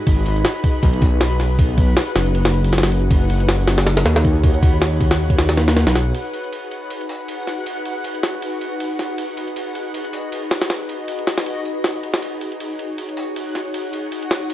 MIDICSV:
0, 0, Header, 1, 5, 480
1, 0, Start_track
1, 0, Key_signature, 5, "minor"
1, 0, Tempo, 379747
1, 86, Time_signature, 4, 2, 24, 8
1, 18377, End_track
2, 0, Start_track
2, 0, Title_t, "Synth texture"
2, 0, Program_c, 0, 99
2, 0, Note_on_c, 0, 71, 87
2, 82, Note_on_c, 0, 78, 87
2, 7756, Note_off_c, 0, 78, 0
2, 7769, Note_on_c, 0, 66, 77
2, 7771, Note_on_c, 0, 78, 80
2, 7777, Note_off_c, 0, 71, 0
2, 11603, Note_on_c, 0, 75, 81
2, 11635, Note_off_c, 0, 78, 0
2, 15449, Note_on_c, 0, 78, 83
2, 15471, Note_off_c, 0, 75, 0
2, 18377, Note_off_c, 0, 66, 0
2, 18377, Note_off_c, 0, 78, 0
2, 18377, End_track
3, 0, Start_track
3, 0, Title_t, "Ambient pad"
3, 0, Program_c, 1, 92
3, 0, Note_on_c, 1, 63, 79
3, 0, Note_on_c, 1, 66, 70
3, 0, Note_on_c, 1, 68, 72
3, 93, Note_on_c, 1, 71, 87
3, 3917, Note_off_c, 1, 71, 0
3, 3929, Note_on_c, 1, 73, 88
3, 7717, Note_off_c, 1, 63, 0
3, 7717, Note_off_c, 1, 66, 0
3, 7717, Note_off_c, 1, 68, 0
3, 7755, Note_off_c, 1, 73, 0
3, 7768, Note_on_c, 1, 68, 69
3, 7768, Note_on_c, 1, 71, 85
3, 7769, Note_on_c, 1, 63, 76
3, 7769, Note_on_c, 1, 66, 69
3, 15423, Note_off_c, 1, 71, 0
3, 15447, Note_on_c, 1, 73, 85
3, 18377, Note_off_c, 1, 63, 0
3, 18377, Note_off_c, 1, 66, 0
3, 18377, Note_off_c, 1, 68, 0
3, 18377, Note_off_c, 1, 73, 0
3, 18377, End_track
4, 0, Start_track
4, 0, Title_t, "Detuned saw bass"
4, 0, Program_c, 2, 39
4, 87, Note_on_c, 2, 32, 102
4, 549, Note_off_c, 2, 32, 0
4, 1045, Note_on_c, 2, 35, 86
4, 2469, Note_off_c, 2, 35, 0
4, 2724, Note_on_c, 2, 30, 85
4, 5108, Note_off_c, 2, 30, 0
4, 5123, Note_on_c, 2, 39, 112
4, 7396, Note_off_c, 2, 39, 0
4, 7416, Note_on_c, 2, 35, 84
4, 7514, Note_off_c, 2, 35, 0
4, 7523, Note_on_c, 2, 35, 99
4, 7743, Note_off_c, 2, 35, 0
4, 18377, End_track
5, 0, Start_track
5, 0, Title_t, "Drums"
5, 86, Note_on_c, 9, 36, 112
5, 86, Note_on_c, 9, 51, 95
5, 213, Note_off_c, 9, 36, 0
5, 213, Note_off_c, 9, 51, 0
5, 326, Note_on_c, 9, 51, 72
5, 453, Note_off_c, 9, 51, 0
5, 458, Note_on_c, 9, 51, 43
5, 565, Note_off_c, 9, 51, 0
5, 565, Note_on_c, 9, 38, 114
5, 565, Note_on_c, 9, 51, 87
5, 692, Note_off_c, 9, 38, 0
5, 692, Note_off_c, 9, 51, 0
5, 806, Note_on_c, 9, 51, 68
5, 807, Note_on_c, 9, 36, 92
5, 932, Note_off_c, 9, 51, 0
5, 933, Note_off_c, 9, 36, 0
5, 1045, Note_on_c, 9, 51, 89
5, 1046, Note_on_c, 9, 36, 116
5, 1172, Note_off_c, 9, 51, 0
5, 1173, Note_off_c, 9, 36, 0
5, 1179, Note_on_c, 9, 51, 45
5, 1284, Note_on_c, 9, 46, 81
5, 1286, Note_on_c, 9, 36, 102
5, 1305, Note_off_c, 9, 51, 0
5, 1411, Note_off_c, 9, 46, 0
5, 1413, Note_off_c, 9, 36, 0
5, 1525, Note_on_c, 9, 38, 115
5, 1525, Note_on_c, 9, 51, 89
5, 1652, Note_off_c, 9, 38, 0
5, 1652, Note_off_c, 9, 51, 0
5, 1766, Note_on_c, 9, 38, 38
5, 1766, Note_on_c, 9, 51, 70
5, 1893, Note_off_c, 9, 38, 0
5, 1893, Note_off_c, 9, 51, 0
5, 2006, Note_on_c, 9, 36, 109
5, 2007, Note_on_c, 9, 51, 89
5, 2133, Note_off_c, 9, 36, 0
5, 2133, Note_off_c, 9, 51, 0
5, 2246, Note_on_c, 9, 36, 101
5, 2246, Note_on_c, 9, 51, 74
5, 2373, Note_off_c, 9, 36, 0
5, 2373, Note_off_c, 9, 51, 0
5, 2486, Note_on_c, 9, 38, 122
5, 2486, Note_on_c, 9, 51, 90
5, 2613, Note_off_c, 9, 38, 0
5, 2613, Note_off_c, 9, 51, 0
5, 2618, Note_on_c, 9, 51, 46
5, 2726, Note_off_c, 9, 51, 0
5, 2726, Note_on_c, 9, 38, 107
5, 2726, Note_on_c, 9, 51, 82
5, 2852, Note_off_c, 9, 38, 0
5, 2852, Note_off_c, 9, 51, 0
5, 2857, Note_on_c, 9, 51, 42
5, 2966, Note_off_c, 9, 51, 0
5, 2966, Note_on_c, 9, 51, 63
5, 3093, Note_off_c, 9, 51, 0
5, 3098, Note_on_c, 9, 38, 103
5, 3098, Note_on_c, 9, 51, 82
5, 3209, Note_off_c, 9, 51, 0
5, 3209, Note_on_c, 9, 51, 40
5, 3225, Note_off_c, 9, 38, 0
5, 3335, Note_off_c, 9, 51, 0
5, 3341, Note_on_c, 9, 51, 64
5, 3447, Note_off_c, 9, 51, 0
5, 3447, Note_on_c, 9, 38, 86
5, 3447, Note_on_c, 9, 51, 67
5, 3514, Note_off_c, 9, 38, 0
5, 3514, Note_off_c, 9, 51, 0
5, 3514, Note_on_c, 9, 38, 94
5, 3514, Note_on_c, 9, 51, 71
5, 3580, Note_off_c, 9, 38, 0
5, 3580, Note_off_c, 9, 51, 0
5, 3580, Note_on_c, 9, 38, 105
5, 3580, Note_on_c, 9, 51, 84
5, 3688, Note_off_c, 9, 51, 0
5, 3688, Note_on_c, 9, 51, 64
5, 3706, Note_off_c, 9, 38, 0
5, 3814, Note_off_c, 9, 51, 0
5, 3926, Note_on_c, 9, 36, 112
5, 3927, Note_on_c, 9, 51, 86
5, 4053, Note_off_c, 9, 36, 0
5, 4053, Note_off_c, 9, 51, 0
5, 4168, Note_on_c, 9, 51, 74
5, 4295, Note_off_c, 9, 51, 0
5, 4299, Note_on_c, 9, 51, 43
5, 4406, Note_off_c, 9, 51, 0
5, 4406, Note_on_c, 9, 38, 117
5, 4406, Note_on_c, 9, 51, 85
5, 4532, Note_off_c, 9, 38, 0
5, 4532, Note_off_c, 9, 51, 0
5, 4646, Note_on_c, 9, 38, 105
5, 4646, Note_on_c, 9, 51, 80
5, 4772, Note_off_c, 9, 38, 0
5, 4772, Note_off_c, 9, 51, 0
5, 4777, Note_on_c, 9, 38, 110
5, 4777, Note_on_c, 9, 51, 79
5, 4886, Note_off_c, 9, 38, 0
5, 4886, Note_off_c, 9, 51, 0
5, 4886, Note_on_c, 9, 38, 109
5, 4886, Note_on_c, 9, 51, 80
5, 5013, Note_off_c, 9, 38, 0
5, 5013, Note_off_c, 9, 51, 0
5, 5019, Note_on_c, 9, 38, 108
5, 5019, Note_on_c, 9, 51, 78
5, 5127, Note_off_c, 9, 38, 0
5, 5127, Note_off_c, 9, 51, 0
5, 5127, Note_on_c, 9, 38, 109
5, 5127, Note_on_c, 9, 51, 79
5, 5254, Note_off_c, 9, 38, 0
5, 5254, Note_off_c, 9, 51, 0
5, 5260, Note_on_c, 9, 38, 113
5, 5260, Note_on_c, 9, 51, 86
5, 5367, Note_off_c, 9, 51, 0
5, 5367, Note_on_c, 9, 36, 90
5, 5367, Note_on_c, 9, 51, 61
5, 5386, Note_off_c, 9, 38, 0
5, 5493, Note_off_c, 9, 36, 0
5, 5493, Note_off_c, 9, 51, 0
5, 5606, Note_on_c, 9, 36, 107
5, 5607, Note_on_c, 9, 51, 85
5, 5733, Note_off_c, 9, 36, 0
5, 5733, Note_off_c, 9, 51, 0
5, 5739, Note_on_c, 9, 51, 41
5, 5847, Note_off_c, 9, 51, 0
5, 5847, Note_on_c, 9, 36, 116
5, 5847, Note_on_c, 9, 51, 94
5, 5973, Note_off_c, 9, 36, 0
5, 5974, Note_off_c, 9, 51, 0
5, 6087, Note_on_c, 9, 38, 111
5, 6087, Note_on_c, 9, 51, 86
5, 6213, Note_off_c, 9, 38, 0
5, 6213, Note_off_c, 9, 51, 0
5, 6327, Note_on_c, 9, 36, 90
5, 6329, Note_on_c, 9, 51, 64
5, 6453, Note_off_c, 9, 36, 0
5, 6455, Note_off_c, 9, 51, 0
5, 6459, Note_on_c, 9, 38, 114
5, 6459, Note_on_c, 9, 51, 83
5, 6586, Note_off_c, 9, 38, 0
5, 6586, Note_off_c, 9, 51, 0
5, 6698, Note_on_c, 9, 36, 87
5, 6698, Note_on_c, 9, 51, 63
5, 6807, Note_off_c, 9, 51, 0
5, 6807, Note_on_c, 9, 38, 103
5, 6807, Note_on_c, 9, 51, 82
5, 6825, Note_off_c, 9, 36, 0
5, 6933, Note_off_c, 9, 38, 0
5, 6933, Note_off_c, 9, 51, 0
5, 6939, Note_on_c, 9, 38, 107
5, 6939, Note_on_c, 9, 51, 82
5, 7047, Note_off_c, 9, 38, 0
5, 7047, Note_off_c, 9, 51, 0
5, 7047, Note_on_c, 9, 38, 105
5, 7047, Note_on_c, 9, 51, 82
5, 7173, Note_off_c, 9, 38, 0
5, 7173, Note_off_c, 9, 51, 0
5, 7179, Note_on_c, 9, 38, 107
5, 7179, Note_on_c, 9, 51, 79
5, 7288, Note_off_c, 9, 38, 0
5, 7288, Note_off_c, 9, 51, 0
5, 7288, Note_on_c, 9, 38, 104
5, 7288, Note_on_c, 9, 51, 79
5, 7414, Note_off_c, 9, 38, 0
5, 7414, Note_off_c, 9, 51, 0
5, 7418, Note_on_c, 9, 38, 103
5, 7418, Note_on_c, 9, 51, 84
5, 7527, Note_off_c, 9, 38, 0
5, 7527, Note_off_c, 9, 51, 0
5, 7527, Note_on_c, 9, 38, 107
5, 7527, Note_on_c, 9, 51, 80
5, 7654, Note_off_c, 9, 38, 0
5, 7654, Note_off_c, 9, 51, 0
5, 7767, Note_on_c, 9, 51, 84
5, 7893, Note_off_c, 9, 51, 0
5, 8007, Note_on_c, 9, 51, 68
5, 8134, Note_off_c, 9, 51, 0
5, 8140, Note_on_c, 9, 51, 39
5, 8247, Note_off_c, 9, 51, 0
5, 8247, Note_on_c, 9, 51, 81
5, 8374, Note_off_c, 9, 51, 0
5, 8486, Note_on_c, 9, 51, 63
5, 8612, Note_off_c, 9, 51, 0
5, 8727, Note_on_c, 9, 51, 80
5, 8853, Note_off_c, 9, 51, 0
5, 8859, Note_on_c, 9, 51, 40
5, 8966, Note_on_c, 9, 46, 78
5, 8986, Note_off_c, 9, 51, 0
5, 9092, Note_off_c, 9, 46, 0
5, 9207, Note_on_c, 9, 51, 83
5, 9334, Note_off_c, 9, 51, 0
5, 9447, Note_on_c, 9, 38, 35
5, 9447, Note_on_c, 9, 51, 65
5, 9573, Note_off_c, 9, 38, 0
5, 9573, Note_off_c, 9, 51, 0
5, 9686, Note_on_c, 9, 51, 82
5, 9812, Note_off_c, 9, 51, 0
5, 9927, Note_on_c, 9, 51, 64
5, 10054, Note_off_c, 9, 51, 0
5, 10166, Note_on_c, 9, 51, 77
5, 10292, Note_off_c, 9, 51, 0
5, 10298, Note_on_c, 9, 51, 43
5, 10406, Note_off_c, 9, 51, 0
5, 10406, Note_on_c, 9, 38, 94
5, 10406, Note_on_c, 9, 51, 71
5, 10533, Note_off_c, 9, 38, 0
5, 10533, Note_off_c, 9, 51, 0
5, 10646, Note_on_c, 9, 51, 80
5, 10772, Note_off_c, 9, 51, 0
5, 10885, Note_on_c, 9, 51, 64
5, 11012, Note_off_c, 9, 51, 0
5, 11126, Note_on_c, 9, 51, 79
5, 11253, Note_off_c, 9, 51, 0
5, 11367, Note_on_c, 9, 38, 45
5, 11367, Note_on_c, 9, 51, 65
5, 11493, Note_off_c, 9, 38, 0
5, 11493, Note_off_c, 9, 51, 0
5, 11606, Note_on_c, 9, 51, 86
5, 11732, Note_off_c, 9, 51, 0
5, 11847, Note_on_c, 9, 51, 67
5, 11973, Note_off_c, 9, 51, 0
5, 11978, Note_on_c, 9, 51, 38
5, 12087, Note_off_c, 9, 51, 0
5, 12087, Note_on_c, 9, 51, 82
5, 12213, Note_off_c, 9, 51, 0
5, 12326, Note_on_c, 9, 51, 65
5, 12452, Note_off_c, 9, 51, 0
5, 12566, Note_on_c, 9, 51, 81
5, 12692, Note_off_c, 9, 51, 0
5, 12697, Note_on_c, 9, 51, 43
5, 12806, Note_on_c, 9, 46, 75
5, 12823, Note_off_c, 9, 51, 0
5, 12932, Note_off_c, 9, 46, 0
5, 13047, Note_on_c, 9, 51, 81
5, 13173, Note_off_c, 9, 51, 0
5, 13286, Note_on_c, 9, 38, 103
5, 13286, Note_on_c, 9, 51, 75
5, 13413, Note_off_c, 9, 38, 0
5, 13413, Note_off_c, 9, 51, 0
5, 13418, Note_on_c, 9, 38, 100
5, 13418, Note_on_c, 9, 51, 78
5, 13525, Note_off_c, 9, 38, 0
5, 13525, Note_off_c, 9, 51, 0
5, 13525, Note_on_c, 9, 38, 99
5, 13525, Note_on_c, 9, 51, 76
5, 13651, Note_off_c, 9, 38, 0
5, 13651, Note_off_c, 9, 51, 0
5, 13766, Note_on_c, 9, 51, 67
5, 13892, Note_off_c, 9, 51, 0
5, 14006, Note_on_c, 9, 51, 82
5, 14132, Note_off_c, 9, 51, 0
5, 14140, Note_on_c, 9, 51, 42
5, 14248, Note_off_c, 9, 51, 0
5, 14248, Note_on_c, 9, 38, 100
5, 14248, Note_on_c, 9, 51, 74
5, 14375, Note_off_c, 9, 38, 0
5, 14375, Note_off_c, 9, 51, 0
5, 14379, Note_on_c, 9, 38, 105
5, 14379, Note_on_c, 9, 51, 80
5, 14488, Note_off_c, 9, 51, 0
5, 14488, Note_on_c, 9, 51, 81
5, 14505, Note_off_c, 9, 38, 0
5, 14615, Note_off_c, 9, 51, 0
5, 14729, Note_on_c, 9, 51, 66
5, 14855, Note_off_c, 9, 51, 0
5, 14968, Note_on_c, 9, 38, 99
5, 14968, Note_on_c, 9, 51, 71
5, 15094, Note_off_c, 9, 38, 0
5, 15094, Note_off_c, 9, 51, 0
5, 15209, Note_on_c, 9, 51, 58
5, 15335, Note_off_c, 9, 51, 0
5, 15339, Note_on_c, 9, 38, 100
5, 15339, Note_on_c, 9, 51, 75
5, 15448, Note_off_c, 9, 51, 0
5, 15448, Note_on_c, 9, 51, 85
5, 15466, Note_off_c, 9, 38, 0
5, 15575, Note_off_c, 9, 51, 0
5, 15689, Note_on_c, 9, 51, 70
5, 15816, Note_off_c, 9, 51, 0
5, 15822, Note_on_c, 9, 51, 42
5, 15931, Note_off_c, 9, 51, 0
5, 15931, Note_on_c, 9, 51, 82
5, 16057, Note_off_c, 9, 51, 0
5, 16168, Note_on_c, 9, 51, 63
5, 16295, Note_off_c, 9, 51, 0
5, 16408, Note_on_c, 9, 51, 83
5, 16535, Note_off_c, 9, 51, 0
5, 16542, Note_on_c, 9, 51, 42
5, 16648, Note_on_c, 9, 46, 74
5, 16668, Note_off_c, 9, 51, 0
5, 16774, Note_off_c, 9, 46, 0
5, 16889, Note_on_c, 9, 51, 83
5, 17016, Note_off_c, 9, 51, 0
5, 17128, Note_on_c, 9, 38, 36
5, 17128, Note_on_c, 9, 51, 63
5, 17254, Note_off_c, 9, 38, 0
5, 17254, Note_off_c, 9, 51, 0
5, 17368, Note_on_c, 9, 51, 84
5, 17494, Note_off_c, 9, 51, 0
5, 17608, Note_on_c, 9, 51, 67
5, 17734, Note_off_c, 9, 51, 0
5, 17847, Note_on_c, 9, 51, 80
5, 17973, Note_off_c, 9, 51, 0
5, 17978, Note_on_c, 9, 51, 42
5, 18087, Note_off_c, 9, 51, 0
5, 18087, Note_on_c, 9, 38, 102
5, 18087, Note_on_c, 9, 51, 72
5, 18213, Note_off_c, 9, 38, 0
5, 18213, Note_off_c, 9, 51, 0
5, 18327, Note_on_c, 9, 51, 80
5, 18377, Note_off_c, 9, 51, 0
5, 18377, End_track
0, 0, End_of_file